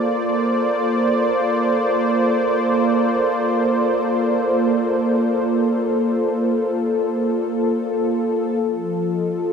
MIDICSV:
0, 0, Header, 1, 2, 480
1, 0, Start_track
1, 0, Key_signature, -2, "major"
1, 0, Tempo, 500000
1, 9148, End_track
2, 0, Start_track
2, 0, Title_t, "Analog synth pad"
2, 0, Program_c, 0, 89
2, 0, Note_on_c, 0, 58, 83
2, 0, Note_on_c, 0, 65, 90
2, 0, Note_on_c, 0, 69, 100
2, 0, Note_on_c, 0, 72, 77
2, 0, Note_on_c, 0, 74, 84
2, 8279, Note_off_c, 0, 74, 0
2, 8287, Note_off_c, 0, 58, 0
2, 8293, Note_on_c, 0, 53, 83
2, 8587, Note_on_c, 0, 75, 70
2, 8799, Note_on_c, 0, 67, 72
2, 9148, Note_off_c, 0, 53, 0
2, 9148, Note_off_c, 0, 65, 0
2, 9148, Note_off_c, 0, 67, 0
2, 9148, Note_off_c, 0, 69, 0
2, 9148, Note_off_c, 0, 72, 0
2, 9148, Note_off_c, 0, 75, 0
2, 9148, End_track
0, 0, End_of_file